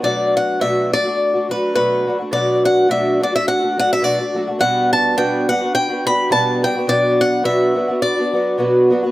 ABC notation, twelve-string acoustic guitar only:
X:1
M:4/4
L:1/16
Q:"Swing" 1/4=105
K:Bm
V:1 name="Twelve-string acoustic guitar"
[B,,F,A,DF]4 [B,,F,A,DF]2 [F,A,DF] [A,DF]2 [A,DF] [F,A,DF]2 [B,,F,A,DF]2 [F,A,DF] [A,DF] | [B,,F,A,DF]4 [B,,F,A,DF]2 [F,A,DF] [A,DF]2 [A,DF] [F,A,DF]2 [B,,F,A,DF] [A,DF] [F,A,DF] [A,DF] | [B,,G,B,DF]4 [B,,G,B,DF]2 [G,B,DF] [B,DF]2 [B,DF] [G,B,DF]2 [B,,G,B,DF]2 [G,B,DF] [B,DF] | [B,,F,B,DF]4 [B,,F,B,DF]2 [F,B,DF] [B,DF]2 [B,DF] [F,B,DF]2 [B,,F,B,DF]2 [F,B,DF] [B,DF] |]